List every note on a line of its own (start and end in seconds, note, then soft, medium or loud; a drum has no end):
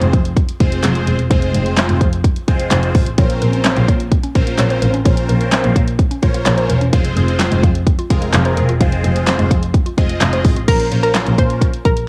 0.00 0.11 F1 loud
0.00 0.19 G#3 medium
0.00 0.19 C4 medium
0.00 0.19 F4 medium
0.00 0.19 G#4 medium
0.00 0.19 C5 loud
0.00 closed hi-hat soft
0.13 0.32 F2 loud
0.13 kick medium
0.13 closed hi-hat medium
0.25 closed hi-hat medium
0.37 kick medium
0.37 closed hi-hat medium
0.49 closed hi-hat soft
0.60 0.79 F1 medium
0.60 1.17 G#3 medium
0.60 1.17 C4 medium
0.60 1.17 F4 medium
0.60 1.17 G#4 medium
0.60 1.17 C5 loud
0.60 kick medium
0.60 closed hi-hat medium
0.72 closed hi-hat medium
0.83 1.02 F1 loud
0.83 snare medium
0.83 clap loud
0.83 closed hi-hat loud
0.95 closed hi-hat medium
1.07 1.26 E1 medium
1.07 closed hi-hat medium
1.19 closed hi-hat medium
1.30 1.49 F1 loud
1.30 2.06 G#3 medium
1.30 2.07 C4 medium
1.30 2.07 F4 medium
1.30 2.07 G#4 medium
1.30 2.07 C5 loud
1.30 kick loud
1.30 closed hi-hat loud
1.42 closed hi-hat medium
1.54 1.73 F1 loud
1.54 closed hi-hat medium
1.66 closed hi-hat medium
1.77 snare medium
1.77 clap loud
1.77 closed hi-hat medium
1.89 1.99 F1 medium
1.89 closed hi-hat soft
2.01 2.20 F2 loud
2.01 kick medium
2.01 closed hi-hat medium
2.13 closed hi-hat medium
2.24 kick medium
2.24 closed hi-hat medium
2.36 closed hi-hat soft
2.48 2.67 F1 medium
2.48 3.05 G#3 medium
2.48 3.05 C4 medium
2.48 3.05 F4 medium
2.48 3.05 G#4 medium
2.48 3.05 C5 loud
2.48 kick medium
2.48 closed hi-hat medium
2.60 closed hi-hat medium
2.71 2.90 F1 loud
2.71 snare medium
2.71 clap loud
2.71 closed hi-hat loud
2.83 closed hi-hat medium
2.95 3.13 A1 medium
2.95 kick loud
2.95 open hi-hat medium
3.06 closed hi-hat medium
3.18 3.37 A#1 loud
3.18 3.94 C4 medium
3.18 3.94 C#4 medium
3.18 3.94 F4 medium
3.18 3.94 A#4 medium
3.18 3.94 C5 medium
3.18 3.24 C#5 loud
3.18 kick loud
3.18 closed hi-hat loud
3.30 closed hi-hat medium
3.41 3.60 A#1 loud
3.41 3.48 A#4 medium
3.41 closed hi-hat medium
3.53 closed hi-hat medium
3.64 3.71 C4 medium
3.64 snare loud
3.64 clap loud
3.64 closed hi-hat medium
3.77 3.86 A#1 loud
3.77 3.83 A#3 medium
3.77 closed hi-hat soft
3.88 4.07 A#2 loud
3.88 3.94 C#5 medium
3.88 kick medium
3.88 closed hi-hat medium
4.00 closed hi-hat medium
4.12 kick medium
4.12 closed hi-hat medium
4.23 4.29 C#4 medium
4.23 closed hi-hat soft
4.35 4.54 A#1 medium
4.35 4.92 C4 medium
4.35 4.92 C#4 medium
4.35 4.92 F4 medium
4.35 4.92 A#4 medium
4.35 4.92 C5 medium
4.35 kick medium
4.35 closed hi-hat medium
4.47 4.53 A#3 medium
4.47 closed hi-hat medium
4.58 4.77 A#1 medium
4.58 4.65 C#5 loud
4.58 snare medium
4.58 clap loud
4.58 closed hi-hat loud
4.70 4.76 C5 medium
4.70 closed hi-hat medium
4.82 5.01 A1 medium
4.82 4.88 A#4 medium
4.82 closed hi-hat medium
4.94 5.00 C#4 medium
4.94 closed hi-hat soft
5.05 5.24 A#1 loud
5.05 5.81 C4 medium
5.05 5.81 C#4 medium
5.05 5.81 F4 medium
5.05 5.81 A#4 medium
5.05 5.81 C5 loud
5.05 5.11 C#5 loud
5.05 kick loud
5.05 closed hi-hat loud
5.17 closed hi-hat medium
5.29 5.48 A#1 loud
5.29 5.35 A#4 medium
5.29 closed hi-hat medium
5.41 closed hi-hat medium
5.52 5.58 C4 medium
5.52 snare loud
5.52 clap loud
5.52 closed hi-hat medium
5.64 5.74 A#1 loud
5.64 5.70 A#3 medium
5.64 closed hi-hat medium
5.76 5.95 A#2 loud
5.76 5.82 C#5 medium
5.76 kick medium
5.76 closed hi-hat medium
5.88 closed hi-hat medium
5.99 kick medium
5.99 closed hi-hat medium
6.11 6.17 C#4 medium
6.11 closed hi-hat soft
6.22 6.41 A#1 medium
6.22 6.80 C#4 medium
6.22 6.80 F4 medium
6.22 6.80 A#4 medium
6.22 6.79 C5 medium
6.22 6.80 C#5 loud
6.22 kick medium
6.22 closed hi-hat medium
6.34 6.40 A#3 medium
6.34 closed hi-hat medium
6.46 6.65 A#1 loud
6.46 6.52 C#5 loud
6.46 snare medium
6.46 clap loud
6.46 closed hi-hat loud
6.58 6.64 C5 medium
6.58 closed hi-hat medium
6.69 6.88 E1 medium
6.69 6.76 A#4 medium
6.69 closed hi-hat medium
6.81 6.87 C#4 medium
6.81 closed hi-hat soft
6.93 7.12 F1 loud
6.93 7.69 G#3 medium
6.93 7.69 C4 medium
6.93 7.69 F4 medium
6.93 7.69 G#4 medium
6.93 7.69 C5 loud
6.93 6.99 F5 loud
6.93 kick loud
6.93 closed hi-hat loud
7.05 closed hi-hat medium
7.16 7.35 F1 loud
7.16 7.22 G#4 medium
7.16 closed hi-hat medium
7.28 closed hi-hat medium
7.39 7.46 C4 medium
7.39 snare loud
7.39 clap loud
7.39 closed hi-hat medium
7.52 7.61 F1 loud
7.52 7.58 G#3 medium
7.52 closed hi-hat medium
7.63 7.82 F2 loud
7.63 7.69 F5 medium
7.63 kick medium
7.63 closed hi-hat medium
7.75 closed hi-hat medium
7.87 kick medium
7.87 closed hi-hat medium
7.99 8.05 F4 medium
7.99 closed hi-hat soft
8.10 8.29 F1 medium
8.10 8.67 G#3 medium
8.10 8.67 C4 medium
8.10 8.67 F4 medium
8.10 8.67 G#4 medium
8.10 8.67 A#4 medium
8.10 kick medium
8.10 closed hi-hat medium
8.22 8.28 G#3 medium
8.22 closed hi-hat medium
8.33 8.52 F1 loud
8.33 8.40 F5 medium
8.33 snare medium
8.33 clap loud
8.33 closed hi-hat loud
8.45 8.51 C5 medium
8.45 closed hi-hat medium
8.57 8.76 E1 medium
8.57 8.63 G#4 medium
8.57 closed hi-hat medium
8.69 8.75 F4 medium
8.69 closed hi-hat medium
8.80 8.99 F1 loud
8.80 9.56 G#3 medium
8.80 9.57 C4 medium
8.80 9.57 F4 medium
8.80 9.57 G#4 medium
8.80 9.57 C5 loud
8.80 8.86 F5 loud
8.80 kick loud
8.80 closed hi-hat loud
8.92 closed hi-hat medium
9.04 9.23 F1 loud
9.04 9.10 G#4 medium
9.04 closed hi-hat medium
9.16 closed hi-hat medium
9.27 9.33 C4 medium
9.27 snare loud
9.27 clap loud
9.27 closed hi-hat medium
9.39 9.48 F1 loud
9.39 9.45 G#3 medium
9.39 closed hi-hat soft
9.51 9.70 F2 loud
9.51 9.57 F5 medium
9.51 kick medium
9.51 closed hi-hat medium
9.63 closed hi-hat medium
9.74 kick medium
9.74 closed hi-hat medium
9.86 9.92 F4 medium
9.86 closed hi-hat soft
9.97 10.17 F1 medium
9.97 10.55 G#3 medium
9.97 10.55 C4 medium
9.97 10.55 F4 medium
9.97 10.55 G#4 medium
9.97 10.55 D#5 medium
9.97 kick medium
9.97 closed hi-hat medium
10.09 10.15 G#3 medium
10.09 closed hi-hat medium
10.21 10.40 F1 loud
10.21 10.27 F5 medium
10.21 snare medium
10.21 clap loud
10.21 closed hi-hat loud
10.33 10.39 C5 medium
10.33 closed hi-hat medium
10.45 10.63 A1 medium
10.45 10.51 G#4 medium
10.45 kick loud
10.45 open hi-hat medium
10.56 10.62 F4 medium
10.56 closed hi-hat medium
10.68 10.87 A#1 loud
10.68 10.87 C#4 medium
10.68 10.87 F4 medium
10.68 10.86 A#4 loud
10.68 10.87 A#4 medium
10.68 10.87 C5 medium
10.68 kick loud
10.68 closed hi-hat loud
10.68 crash loud
10.80 closed hi-hat medium
10.91 11.10 A#1 loud
10.91 11.67 C#4 medium
10.91 11.67 F4 medium
10.91 11.67 A#4 medium
10.91 11.68 C5 medium
10.91 closed hi-hat medium
11.03 11.12 A#4 medium
11.03 closed hi-hat medium
11.14 snare medium
11.14 clap loud
11.14 closed hi-hat medium
11.27 11.36 A#1 loud
11.27 closed hi-hat medium
11.38 11.57 A#2 loud
11.38 11.56 C5 medium
11.38 kick medium
11.38 closed hi-hat medium
11.50 closed hi-hat medium
11.62 kick medium
11.62 closed hi-hat medium
11.74 closed hi-hat soft
11.85 12.04 A#1 medium
11.85 12.03 A#4 medium
11.85 kick medium
11.85 closed hi-hat medium
11.97 closed hi-hat medium